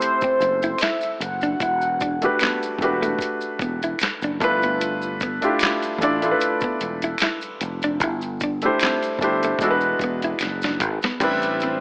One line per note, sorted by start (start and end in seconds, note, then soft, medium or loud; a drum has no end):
0.00 1.63 A3 medium
0.00 1.62 C4 medium
0.00 1.63 E4 medium
0.00 1.62 G4 medium
0.00 1.62 A4 medium
0.00 1.62 B4 medium
0.00 0.83 C5 medium
0.00 1.26 C5 medium
0.00 closed hi-hat medium
0.00 maracas medium
0.21 0.38 C4 medium
0.21 muted fretless electric bass stroke soft
0.21 kick medium
0.21 maracas soft
0.40 0.73 F#1 medium
0.40 muted hollow-body jazz guitar stroke soft
0.40 closed hi-hat soft
0.40 maracas soft
0.62 0.78 E4 medium
0.62 closed hi-hat soft
0.62 maracas soft
0.78 1.21 E5 medium
0.78 finger snap medium
0.78 closed hi-hat medium
0.78 maracas medium
0.83 0.99 E4 medium
0.83 snare loud
0.83 clap medium
1.01 closed hi-hat soft
1.01 maracas soft
1.20 1.53 F#1 medium
1.20 2.77 F#5 loud
1.20 muted hollow-body jazz guitar stroke soft
1.20 closed hi-hat medium
1.20 maracas soft
1.41 1.57 D4 medium
1.41 closed hi-hat soft
1.41 maracas soft
1.60 2.27 E1 loud
1.60 1.78 E4 medium
1.60 kick loud
1.60 closed hi-hat medium
1.60 maracas medium
1.81 maracas soft
2.00 2.18 D4 medium
2.00 kick medium
2.00 closed hi-hat medium
2.00 maracas soft
2.22 2.75 A3 medium
2.22 2.75 D4 medium
2.22 2.76 F#4 medium
2.22 2.76 G4 medium
2.22 2.77 B4 medium
2.22 closed hi-hat soft
2.22 maracas soft
2.39 2.58 B3 medium
2.39 finger snap medium
2.39 snare loud
2.39 closed hi-hat medium
2.39 maracas medium
2.44 clap medium
2.63 closed hi-hat soft
2.63 maracas soft
2.79 3.12 E1 medium
2.79 4.25 A3 medium
2.79 4.26 D4 medium
2.79 muted hollow-body jazz guitar stroke soft
2.79 kick medium
2.79 closed hi-hat medium
2.79 maracas soft
2.83 4.26 F#4 medium
2.83 4.27 G4 medium
2.83 4.27 B4 medium
3.02 3.17 A3 medium
3.02 closed hi-hat soft
3.02 maracas medium
3.19 muted hollow-body jazz guitar stroke soft
3.19 kick medium
3.19 closed hi-hat medium
3.19 maracas medium
3.41 maracas soft
3.59 3.93 E1 medium
3.59 3.78 B3 medium
3.59 kick medium
3.59 closed hi-hat medium
3.59 maracas soft
3.82 3.98 E4 medium
3.82 closed hi-hat soft
3.82 maracas soft
3.99 finger snap medium
3.99 muted fretless electric bass stroke medium
3.99 closed hi-hat medium
3.99 maracas medium
4.03 snare medium
4.03 clap medium
4.22 4.41 F#1 medium
4.22 4.38 D4 medium
4.22 closed hi-hat soft
4.22 maracas soft
4.40 5.39 G1 medium
4.40 5.31 A3 medium
4.40 5.31 D4 medium
4.40 5.32 E4 medium
4.40 5.32 F4 medium
4.40 5.33 B4 loud
4.40 muted hollow-body jazz guitar stroke soft
4.40 kick loud
4.40 closed hi-hat medium
4.40 maracas soft
4.62 4.78 B3 medium
4.62 closed hi-hat soft
4.62 maracas soft
4.81 closed hi-hat medium
4.81 maracas medium
5.02 maracas soft
5.20 5.39 B3 medium
5.20 kick medium
5.20 closed hi-hat medium
5.20 maracas soft
5.41 5.95 A3 medium
5.41 5.95 D4 medium
5.41 5.95 E4 medium
5.41 5.96 F4 medium
5.41 5.96 G4 medium
5.41 closed hi-hat soft
5.41 maracas soft
5.59 finger snap medium
5.59 snare loud
5.59 closed hi-hat medium
5.59 maracas medium
5.64 clap loud
5.82 closed hi-hat soft
5.82 maracas medium
5.99 6.32 A1 medium
5.99 6.20 A3 medium
5.99 6.20 D4 medium
5.99 6.20 E4 medium
5.99 kick medium
5.99 closed hi-hat medium
5.99 maracas soft
6.03 6.19 D4 medium
6.03 6.21 F4 medium
6.03 6.21 D5 medium
6.22 7.64 A3 medium
6.22 7.65 D4 medium
6.22 7.65 E4 medium
6.22 7.66 F4 medium
6.22 6.30 A4 medium
6.22 closed hi-hat soft
6.22 maracas soft
6.31 7.69 B4 medium
6.41 closed hi-hat medium
6.41 maracas medium
6.61 6.78 B3 medium
6.61 muted fretless electric bass stroke medium
6.61 kick medium
6.61 maracas soft
6.80 7.14 E1 medium
6.80 muted hollow-body jazz guitar stroke soft
6.80 closed hi-hat medium
6.80 maracas soft
7.02 7.18 E4 medium
7.02 closed hi-hat soft
7.02 maracas soft
7.18 finger snap medium
7.18 snare medium
7.18 closed hi-hat medium
7.18 maracas medium
7.23 7.39 E4 medium
7.23 clap medium
7.41 closed hi-hat soft
7.41 maracas soft
7.61 8.01 F1 medium
7.61 muted hollow-body jazz guitar stroke soft
7.61 closed hi-hat medium
7.61 maracas soft
7.82 7.98 D4 medium
7.82 closed hi-hat soft
7.82 maracas soft
8.00 8.67 G1 loud
8.00 8.19 E4 medium
8.00 kick loud
8.00 closed hi-hat medium
8.00 maracas medium
8.21 closed hi-hat soft
8.21 maracas soft
8.40 8.59 D4 medium
8.40 kick loud
8.40 closed hi-hat medium
8.40 maracas soft
8.62 9.15 A3 medium
8.62 9.15 D4 medium
8.62 9.16 E4 medium
8.62 9.16 G4 medium
8.62 closed hi-hat soft
8.62 maracas soft
8.66 9.17 C5 medium
8.79 8.99 C4 medium
8.79 finger snap medium
8.79 snare loud
8.79 closed hi-hat medium
8.79 maracas medium
8.84 clap medium
9.03 closed hi-hat soft
9.03 maracas soft
9.19 9.53 G1 medium
9.19 9.61 A3 medium
9.19 9.60 D4 medium
9.19 9.61 E4 medium
9.19 kick medium
9.19 closed hi-hat medium
9.19 maracas soft
9.23 9.62 G4 medium
9.23 9.62 C5 medium
9.23 muted hollow-body jazz guitar stroke soft
9.43 9.58 A3 medium
9.43 closed hi-hat soft
9.43 maracas medium
9.59 9.93 E1 medium
9.59 11.05 G#3 medium
9.59 11.06 D4 medium
9.59 11.06 E4 medium
9.59 kick loud
9.59 closed hi-hat medium
9.59 maracas medium
9.63 11.06 F#4 medium
9.63 9.69 A4 medium
9.63 muted hollow-body jazz guitar stroke soft
9.71 11.10 B4 loud
9.81 maracas soft
9.99 10.33 E1 medium
9.99 kick medium
9.99 closed hi-hat medium
9.99 maracas soft
10.04 10.19 B3 medium
10.22 10.38 E4 medium
10.22 closed hi-hat soft
10.22 maracas soft
10.39 10.81 F#1 medium
10.39 finger snap medium
10.39 snare medium
10.39 closed hi-hat medium
10.39 maracas medium
10.62 10.78 D4 medium
10.62 snare medium
10.62 closed hi-hat soft
10.62 maracas soft
10.80 10.98 G#1 medium
10.80 muted hollow-body jazz guitar stroke soft
10.80 closed hi-hat medium
10.80 mid tom medium
10.80 maracas soft
11.02 11.18 B3 medium
11.02 snare medium
11.02 closed hi-hat soft
11.02 maracas soft
11.20 11.80 A1 loud
11.20 11.75 G3 loud
11.20 11.76 C4 medium
11.20 11.76 D4 medium
11.20 11.76 E4 loud
11.20 11.77 B4 loud
11.20 kick loud
11.20 closed hi-hat medium
11.20 crash medium
11.20 maracas medium
11.42 closed hi-hat soft
11.42 maracas soft
11.60 11.79 C4 medium
11.60 11.80 C5 medium
11.60 closed hi-hat medium
11.60 maracas soft